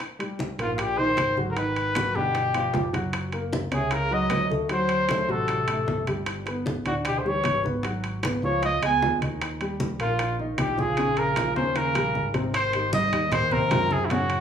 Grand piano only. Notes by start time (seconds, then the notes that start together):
0.19 G3 G4
0.59 A#3 A#4
0.98 D#3 D#4
1.38 F#3 F#4
1.56 D#3 D#4
1.96 F#3 F#4
2.15 D3 D4
2.54 F3 F4
2.93 F#3 F#4
3.33 A#3 A#4
3.71 C#4 C#5
4.11 F#3 F#4
4.50 A3 A4
4.71 F#3 F#4
5.09 A3 A4
5.29 F#3 F#4
5.69 A3 A4
6.07 G3 G4
6.47 B3 B4
6.86 D4 D5
7.25 G3 G4
7.65 B3 B4
7.85 F#3 F#4
8.24 B3 B4
8.43 F3 F4
8.82 G#3 G#4
9.21 D#3 D#4
9.61 G3 G4
10.00 A#3 A#4
10.39 D#3 D#4
10.78 F3 F4
10.98 C#3 C#4
11.37 F3 F4
11.57 C#3 C#4
11.96 G3 G4
12.35 C3 C4
12.74 D#3 D#4 G4
13.12 D#3 D#4 G4
13.52 C3 C4 C5
13.71 C3 C4 C5
14.11 C#3 C#4 C#5